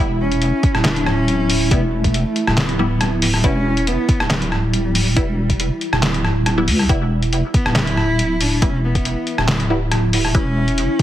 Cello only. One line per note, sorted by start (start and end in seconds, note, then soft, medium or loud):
0.21 0.81 C#4 loud
0.85 1.08 D4 loud
1.07 1.71 C#4 loud
1.71 1.81 B3 loud
1.93 2.59 A3 loud
2.58 3.22 B3 medium
3.44 3.88 C#4 loud
3.87 4.29 B3 loud
4.30 6.42 G3 loud
7.55 7.78 B3 loud
7.76 8.43 E4 loud
8.41 8.64 D4 loud
8.63 8.83 C#4 loud
8.84 9.66 B3 medium
10.35 11.01 C#4 loud